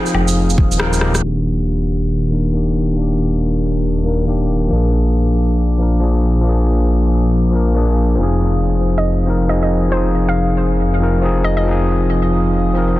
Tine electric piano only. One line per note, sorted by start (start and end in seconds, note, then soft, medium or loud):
0.00 0.78 F3 medium
0.00 0.79 C4 medium
0.00 0.80 D#4 medium
0.00 1.25 G#4 loud
0.00 0.81 A#4 medium
0.78 0.98 F3 medium
0.78 0.99 C4 medium
0.78 1.00 D#4 medium
0.78 1.00 A#4 loud
0.99 1.20 F3 medium
0.99 1.21 C4 medium
0.99 1.21 D#4 medium
1.04 1.22 G4 loud
1.19 2.28 D#3 medium
1.19 2.29 A#3 medium
1.24 2.30 D4 medium
1.24 2.32 G4 medium
2.30 2.51 D#3 medium
2.30 2.51 A#3 medium
2.30 2.52 D4 medium
2.30 2.53 A#4 medium
2.52 2.92 D#3 medium
2.52 2.95 A#3 medium
2.52 2.96 D4 medium
2.56 2.96 G4 medium
2.93 4.02 D#3 medium
2.93 4.03 A#3 medium
2.99 4.04 D4 medium
2.99 4.06 G4 medium
4.04 4.24 D#3 medium
4.04 4.25 A#3 medium
4.04 4.26 D4 medium
4.08 4.27 A#4 medium
4.25 4.68 D#3 medium
4.25 4.69 A#3 medium
4.25 4.70 D4 medium
4.30 4.70 G4 medium
4.68 5.76 F3 medium
4.68 5.77 A#3 medium
4.73 5.79 D4 medium
4.73 5.80 G#4 medium
5.78 5.99 F3 medium
5.78 5.99 A#3 medium
5.78 6.00 D4 medium
5.82 6.01 A#4 medium
6.00 6.40 F3 medium
6.00 6.43 A#3 medium
6.00 6.43 D4 medium
6.00 6.44 G#4 medium
6.41 7.50 F3 medium
6.41 7.51 A#3 medium
6.47 7.52 D4 medium
6.47 7.54 G#4 medium
7.51 7.72 F3 medium
7.51 7.73 A#3 medium
7.51 7.73 D4 medium
7.55 7.74 A#4 medium
7.74 8.14 F3 medium
7.74 8.16 A#3 medium
7.74 8.17 D4 medium
7.74 8.18 G#4 medium
8.15 9.23 F3 medium
8.15 9.25 C4 medium
8.20 9.26 D#4 medium
8.20 9.28 G#4 medium
9.25 9.46 F3 medium
9.25 9.47 C4 medium
9.25 9.47 D#4 medium
9.30 9.48 A#4 medium
9.47 9.88 F3 medium
9.47 9.90 C4 medium
9.47 9.91 D#4 medium
9.52 9.92 G#4 medium
9.89 10.97 F3 medium
9.89 10.99 C4 medium
9.94 11.00 D#4 medium
9.94 11.01 G#4 medium
10.99 11.20 F3 medium
10.99 11.21 C4 medium
10.99 11.21 D#4 medium
11.03 11.22 A#4 medium
11.21 11.62 F3 medium
11.21 11.64 C4 medium
11.21 11.65 D#4 medium
11.21 11.66 G#4 medium
11.63 12.71 F3 medium
11.63 12.73 C4 medium
11.68 12.74 D#4 medium
11.68 12.75 G#4 medium
12.74 12.94 F3 medium
12.74 12.95 C4 medium
12.74 12.96 D#4 medium
12.78 12.96 A#4 medium
12.95 13.00 F3 medium